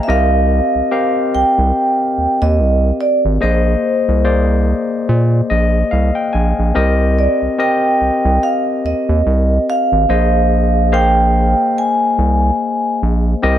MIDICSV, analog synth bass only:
0, 0, Header, 1, 2, 480
1, 0, Start_track
1, 0, Tempo, 833333
1, 49, Time_signature, 4, 2, 24, 8
1, 7826, End_track
2, 0, Start_track
2, 0, Title_t, "Analog synth bass"
2, 0, Program_c, 0, 38
2, 49, Note_on_c, 0, 36, 109
2, 347, Note_off_c, 0, 36, 0
2, 431, Note_on_c, 0, 36, 49
2, 470, Note_off_c, 0, 36, 0
2, 774, Note_on_c, 0, 36, 45
2, 828, Note_off_c, 0, 36, 0
2, 910, Note_on_c, 0, 36, 83
2, 988, Note_off_c, 0, 36, 0
2, 1253, Note_on_c, 0, 39, 44
2, 1307, Note_off_c, 0, 39, 0
2, 1392, Note_on_c, 0, 39, 86
2, 1492, Note_on_c, 0, 36, 88
2, 1501, Note_off_c, 0, 39, 0
2, 1679, Note_off_c, 0, 36, 0
2, 1870, Note_on_c, 0, 32, 84
2, 1948, Note_off_c, 0, 32, 0
2, 1975, Note_on_c, 0, 34, 99
2, 2160, Note_off_c, 0, 34, 0
2, 2351, Note_on_c, 0, 36, 90
2, 2726, Note_off_c, 0, 36, 0
2, 2930, Note_on_c, 0, 46, 97
2, 3117, Note_off_c, 0, 46, 0
2, 3172, Note_on_c, 0, 34, 86
2, 3358, Note_off_c, 0, 34, 0
2, 3412, Note_on_c, 0, 36, 89
2, 3519, Note_off_c, 0, 36, 0
2, 3653, Note_on_c, 0, 34, 90
2, 3760, Note_off_c, 0, 34, 0
2, 3794, Note_on_c, 0, 34, 82
2, 3870, Note_off_c, 0, 34, 0
2, 3893, Note_on_c, 0, 36, 96
2, 4189, Note_off_c, 0, 36, 0
2, 4272, Note_on_c, 0, 36, 48
2, 4311, Note_off_c, 0, 36, 0
2, 4612, Note_on_c, 0, 36, 46
2, 4667, Note_off_c, 0, 36, 0
2, 4750, Note_on_c, 0, 36, 92
2, 4828, Note_off_c, 0, 36, 0
2, 5094, Note_on_c, 0, 39, 42
2, 5148, Note_off_c, 0, 39, 0
2, 5234, Note_on_c, 0, 39, 84
2, 5311, Note_off_c, 0, 39, 0
2, 5334, Note_on_c, 0, 36, 92
2, 5520, Note_off_c, 0, 36, 0
2, 5714, Note_on_c, 0, 32, 90
2, 5791, Note_off_c, 0, 32, 0
2, 5814, Note_on_c, 0, 34, 95
2, 6649, Note_off_c, 0, 34, 0
2, 7017, Note_on_c, 0, 36, 84
2, 7203, Note_off_c, 0, 36, 0
2, 7502, Note_on_c, 0, 34, 88
2, 7687, Note_off_c, 0, 34, 0
2, 7737, Note_on_c, 0, 36, 104
2, 7826, Note_off_c, 0, 36, 0
2, 7826, End_track
0, 0, End_of_file